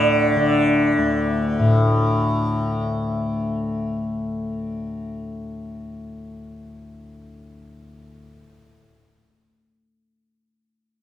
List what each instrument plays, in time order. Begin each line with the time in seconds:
Already playing: tanpura D2 A2 D3, sitar D4
0.36 tanpura D3
0.98 tanpura D2
1.59 tanpura A2